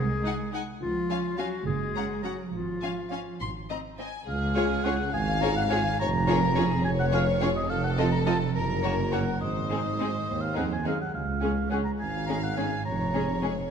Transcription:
Already playing: C2 G#3 G#4
0.23 D#4 F#5 G#5
0.52 D#4 F#5 G#5
0.80 C#2 F3 F4
1.09 C#4 F5 G#5
1.37 F#3 C#4 F#4 F5 G#5
1.66 F#1 G#3 G#4
1.95 C#4 F#5 A#5
2.24 F#3 C#4 F#4 F#5 A#5
2.53 G#1 F3 F4
2.82 C#4 F5 G#5
3.11 C#4 F5 G#5
3.40 G#1 C6
3.69 C4 D#5 A#5
3.99 C4 D#5 G#5
4.27 C#2 G#4 F5
4.56 C#4 F4 G#4 C#5
4.84 C#4 F4 G#4 C#5 F#5
5.12 G#1 G#2 F5 G#5
5.41 C#4 F4 G#4 C#5 A#5
5.57 F#5
5.69 C#4 F4 G#4 C#5 G#5
5.99 F1 F2 C#5 A#5
6.28 C#4 F4 G#4 A#4 C#5
6.56 C#4 F4 G#4 C#5
6.85 F1 F2 C#5 G#5
7.00 F#5
7.12 C#4 F4 G#4 C#5 F5
7.41 C#4 F4 G#4 C#5
7.56 D#5
7.69 F1 F2 A4 F5
7.84 F#5
7.98 C4 F4 A4 D#5 A5
8.12 A#5
8.25 C4 F4 A4 D#5 A5
8.55 F#1 F#2 A#4 A#5
8.84 A#3 C#4 F#4 C#5
9.12 A#3 C#4 F#4 C#5 F#5
9.41 G#1 G#2 C5 D#5
9.70 G#3 C4 D#4 G#4
10.00 G#3 C4 D#4 G#4
10.28 D#2
10.42 F5
10.56 F2 G#3 C4 D#4 G#4 F#5
10.73 G#5
10.85 F#2 G#3 C4 D#4 G#4 F5
11.01 F#5
11.14 C#2 F5
11.42 G#3 C#4 G#4
11.71 G#3 C#4 G#4 F#5
11.85 A#5
11.99 G#1 G#2 F5 G#5
12.27 G#3 C#4 G#4 A#5
12.43 F#5
12.57 G#3 C#4 G#4 G#5
12.85 F1 F2 C#5 A#5
13.13 G#3 C#4 G#4
13.42 G#3 C#4 G#4

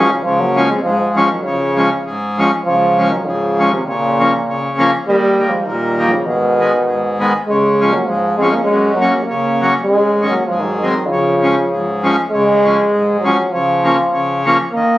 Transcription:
Already playing: G#2 D#3 F3 F#3 G#3
0.00 C#4
0.10 C#3 F3
0.23 C#3 F3 G#3
0.40 F#3 A#3
0.55 F3 G#3 C#4
0.68 G#3 C4
0.83 G#2 F3 G#3
0.99 F3 G#3
1.16 F3 G#3 C#4
1.30 D#3 F#3
1.43 C#3
1.49 F3
1.77 F3 G#3 C#4
2.06 G#2
2.38 F3 G#3 C#4
2.65 C#3 F3 G#3
2.98 F3 G#3 C#4
3.10 D#3 F#3
3.25 G#2 C#3 F3
3.59 F3 G#3 C#4
3.70 C3 D#3
3.85 A#2 C#3
3.89 C#3
4.19 F3 A#3 C#4
4.49 C#3
4.78 F3 A#3 C#4
5.06 D#3 G3 A#3
5.38 D#3 G3 A#3
5.47 F3 G#3
5.61 G3
5.65 A#2 D#3
5.98 D#3 G3 A#3
6.08 C#3 F3
6.24 B2 D#3
6.28 G#2
6.60 D#3 G#3 B3
6.88 G#2
7.20 D#3 G#3 B3
7.48 C#3 G#3 C#4
7.80 F3 G#3 C#4
7.90 F#3 A#3
8.06 G#2 F3 G#3
8.37 F3 G#3 C4
8.42 G#3 C#4
8.51 A#3 C#4
8.63 G#3 C#4
8.70 F#2
8.94 F#3 A#3
9.01 F#3 A#3 C#4
9.23 A#3 C#4
9.30 C#3
9.61 F#3 A#3 C#4
9.83 G#3 C#4
9.91 G#2
10.21 D#3 G#3 C#4
10.29 F#3 A#3
10.45 F3 G#3
10.51 G#2
10.60 D#3
10.64 F#3
10.76 D#3
10.80 D#3 F#3 G#3 C4
11.06 C#3 F3
11.12 C#3
11.42 F3 G#3 C#4
11.72 G#2
12.03 F3 G#3 C#4
12.30 C#3 G#3
12.64 F3 G#3 C#4
12.92 G#2
13.20 F3 F#3 G#3
13.25 C#4
13.51 C#3 F3
13.83 F3 A#3 C#4
14.13 C#3
14.45 F3 A#3 C#4
14.72 D#3 A#3

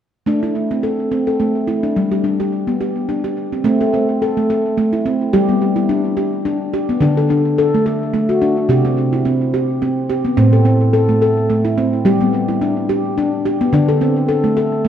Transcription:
0.26 A3 D4
0.43 E4
0.71 C4
0.83 A4
1.12 C4
1.27 A4
1.40 A3
1.67 E4
1.83 D4
1.96 G3
2.11 G4
2.24 D4
2.40 G4
2.67 B3
2.81 G4
3.09 D4
3.24 G4
3.52 C4
3.64 A3 C4
3.81 A4
3.94 C4
4.22 A4
4.37 A3
4.50 A4
4.78 A3
4.93 E4
5.06 C4
5.33 G3 G4
5.49 B3
5.76 E4
5.89 D4
6.17 G4
6.45 D4
6.74 G4
6.89 B3
7.01 D3 D4
7.17 A4
7.30 D4
7.58 A4
7.74 A3
7.86 A4
8.14 A3
8.29 F#4
8.42 D4
8.69 C3 G4
8.85 C4
9.13 E4
9.25 C4
9.54 G4
9.82 C4
10.09 G4
10.24 B3
10.37 A2 C4
10.53 A4
10.65 C4
10.93 A4
11.09 A3
11.22 A4
11.50 A3
11.65 E4
11.78 C4
12.05 G3 G4
12.21 B3
12.48 E4
12.62 D4
12.89 G4
13.18 D4
13.46 G4
13.61 B3
13.73 D3 D4
13.89 A4
14.01 C4
14.29 A4
14.44 A3
14.57 A4
14.85 A3

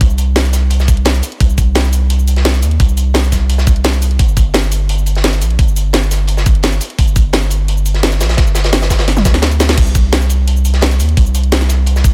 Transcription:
0.01 C2, kick, closed hi-hat
0.10 cabasa
0.18 closed hi-hat, cabasa
0.36 snare, closed hi-hat
0.45 cabasa
0.53 snare, closed hi-hat, open hi-hat, cabasa
0.70 closed hi-hat
0.80 snare, cabasa
0.88 kick, closed hi-hat, cabasa
0.97 closed hi-hat
1.05 snare, closed hi-hat
1.15 closed hi-hat, cabasa
1.23 closed hi-hat, open hi-hat, cabasa
1.32 closed hi-hat
1.40 C2, kick, closed hi-hat
1.50 cabasa
1.58 kick, closed hi-hat, cabasa
1.75 snare, closed hi-hat
1.84 cabasa
1.93 closed hi-hat, open hi-hat, cabasa
2.10 closed hi-hat
2.19 cabasa
2.28 closed hi-hat, cabasa
2.36 snare, closed hi-hat
2.45 snare, closed hi-hat
2.54 snare, closed hi-hat, cabasa
2.62 D#2, closed hi-hat, open hi-hat, cabasa
2.71 closed hi-hat
2.80 C2, kick, closed hi-hat
2.89 cabasa
2.97 closed hi-hat, cabasa
3.14 snare, closed hi-hat
3.24 cabasa
3.32 kick, snare, closed hi-hat, open hi-hat, cabasa
3.49 closed hi-hat
3.58 snare, cabasa
3.67 C2, kick, closed hi-hat, cabasa
3.76 closed hi-hat
3.84 snare, closed hi-hat
3.93 closed hi-hat, cabasa
4.02 closed hi-hat, open hi-hat, cabasa
4.11 closed hi-hat
4.19 G1, kick, closed hi-hat
4.28 cabasa
4.37 kick, closed hi-hat, cabasa
4.54 snare, closed hi-hat
4.63 cabasa
4.71 closed hi-hat, open hi-hat, cabasa
4.89 closed hi-hat
4.98 cabasa
5.06 closed hi-hat, cabasa
5.15 snare, closed hi-hat
5.24 snare, closed hi-hat
5.33 snare, closed hi-hat, cabasa
5.41 A#1, closed hi-hat, open hi-hat, cabasa
5.50 closed hi-hat
5.59 G1, kick, closed hi-hat
5.68 cabasa
5.76 closed hi-hat, cabasa
5.93 snare, closed hi-hat
6.03 cabasa
6.11 snare, closed hi-hat, open hi-hat, cabasa
6.27 closed hi-hat
6.37 snare, cabasa
6.46 kick, closed hi-hat, cabasa
6.55 closed hi-hat
6.63 snare, closed hi-hat
6.72 closed hi-hat, cabasa
6.81 closed hi-hat, open hi-hat, cabasa
6.90 closed hi-hat
6.99 G1, kick, closed hi-hat
7.07 cabasa
7.16 kick, closed hi-hat, cabasa
7.33 snare, closed hi-hat
7.42 cabasa
7.50 closed hi-hat, open hi-hat, cabasa
7.68 closed hi-hat
7.77 cabasa
7.86 closed hi-hat, cabasa
7.94 snare, closed hi-hat
8.03 snare, closed hi-hat
8.12 snare, closed hi-hat, cabasa
8.20 A#1, snare, closed hi-hat, open hi-hat, cabasa
8.29 snare, closed hi-hat
8.37 G1, kick, snare, closed hi-hat
8.47 cabasa
8.55 snare, closed hi-hat, cabasa
8.64 snare, closed hi-hat
8.72 snare, closed hi-hat
8.82 snare, closed hi-hat, cabasa
8.90 kick, snare, closed hi-hat, open hi-hat, cabasa
8.99 snare, closed hi-hat
9.08 snare, closed hi-hat
9.17 snare, high tom, cabasa
9.25 D2, kick, snare, closed hi-hat, cabasa
9.34 snare, closed hi-hat
9.42 snare, closed hi-hat
9.52 closed hi-hat, cabasa
9.60 snare, closed hi-hat, open hi-hat, cabasa
9.69 snare, closed hi-hat
9.77 C2, kick, closed hi-hat, crash
9.87 cabasa
9.95 kick, closed hi-hat, cabasa
10.13 snare, closed hi-hat
10.22 cabasa
10.29 closed hi-hat, cabasa
10.47 closed hi-hat
10.56 cabasa
10.65 closed hi-hat, cabasa
10.74 snare, closed hi-hat
10.81 snare, closed hi-hat
10.91 snare, closed hi-hat, cabasa
11.00 D#2, closed hi-hat, open hi-hat, cabasa
11.09 closed hi-hat
11.17 C2, kick, closed hi-hat
11.26 cabasa
11.35 closed hi-hat, cabasa
11.44 closed hi-hat
11.52 snare, closed hi-hat
11.61 snare, cabasa
11.68 snare, closed hi-hat, cabasa
11.86 closed hi-hat
11.96 snare, cabasa
12.04 C2, kick, closed hi-hat, cabasa

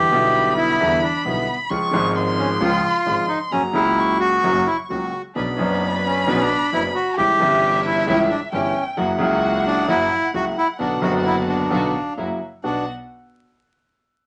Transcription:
Already playing: G4 B5
0.10 B1 B2 D3 G3 B3 E4
0.57 E4
0.80 E2 D3 E3 G3 B3 E4
1.03 D4
1.25 B1 B2 D3 G3 B3 E4
1.70 C#2 C#3 F3 G#3 F4 C#6
1.91 G#1 G#2 C#3 F3 G#3 F4
2.15 C6
2.39 C#4
2.61 C#2 C#3 F3 G#3 F4
3.06 G#1 G#2 C#3 F3 G#3 F4
3.28 D#4
3.52 F#1 F#2 C#3 F#3 A#3 C#4 F#4 A#5
3.73 C#2 C#3 F#3 A#3 E4 F#4
3.99 C#6
4.20 F#4
4.44 F#1 F#2 C#3 F#3 A#3 F#4
4.66 E4
4.90 C#2 C#3 F#3 A#3 F#4
5.35 B1 B2 C#3 F#3 B3 C#4 D4 B4 B5
5.57 F#1 F#2 F#3 B3 C#4 D4 B4
5.61 D4
6.06 C#4
6.27 B1 B2 C#3 F#3 B3 C#4 D4 B4
6.35 C#4
6.41 D4
6.72 F#1 F#2 C#3 F#3 B3 C#4 D4 E4 B4
6.95 F#4
7.17 C#2 C#3 E3 G3 C#4 E4 G4 E5
7.38 G1 G2 C#3 E3 G3 C#4 E4 G4
7.43 E4
7.85 E4
8.07 C#2 C#3 E3 G3 C#4 E4 G4
8.30 D4
8.52 G1 G2 C#3 E3 G3 C#4 E4 G4 G5
8.97 F#1 F#2 C#3 F#3 A#3 E4 F#4 F#5
9.18 C#2 C#3 F#3 A#3 E4 F#4
9.66 D4
9.88 F#1 F#2 C#3 F#3 A#3 E4 F#4
10.33 C#2 C#3 F#3 A#3 E4 F#4
10.58 E4
10.79 B1 B2 D3 F#3 B3 D4 F#4 F#5
11.00 F#1 F#2 D3 F#3 B3 D4 F#4
11.26 E4
11.48 D4
11.70 B1 B2 D3 F#3 B3 D4 F#4 F5
12.17 F#1 F#2 C#3 F#3 A#3 E4 F#4
12.64 B1 B3 D4 F#4 F#5

